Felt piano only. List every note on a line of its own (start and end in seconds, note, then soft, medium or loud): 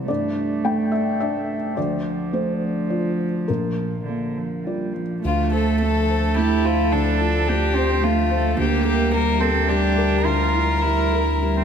0.00 0.11 C2 soft
0.00 0.11 G3 soft
0.00 0.11 E4 soft
0.00 0.12 C5 medium
0.00 0.08 D5 medium
0.08 1.73 G2 medium
0.08 0.60 D5 medium
0.65 1.54 A3 soft
0.65 0.91 G5 medium
0.92 1.18 E5 medium
1.20 1.73 D4 soft
1.20 1.73 D5 soft
1.20 1.72 E5 medium
1.77 3.44 D2 medium
1.77 2.29 D5 medium
2.33 3.24 A3 soft
2.33 3.44 C5 medium
2.90 3.44 F4 soft
2.90 3.44 D5 soft
3.48 5.21 A#1 soft
3.48 4.91 A#4 soft
4.09 5.02 A#3 soft
4.67 5.20 F4 soft
4.67 5.20 D5 soft
5.24 6.89 D2 soft
5.52 5.98 C5 soft
5.82 6.27 A3 soft
6.09 6.54 C5 soft
6.37 6.82 A3 soft
6.65 7.09 C5 soft
6.92 8.54 D2 soft
7.21 7.65 F4 soft
7.49 7.93 A3 soft
7.77 8.20 C5 soft
8.04 8.47 A3 soft
8.31 8.58 C5 soft
8.57 10.22 D2 medium
8.85 9.30 A#4 soft
9.13 9.58 G3 soft
9.42 9.87 A#4 soft
9.69 10.15 G3 soft
9.98 10.43 A#4 soft
10.26 11.64 D2 soft
10.55 11.01 E4 soft
10.84 11.30 G3 soft
11.13 11.59 A#4 soft
11.42 11.64 G3 soft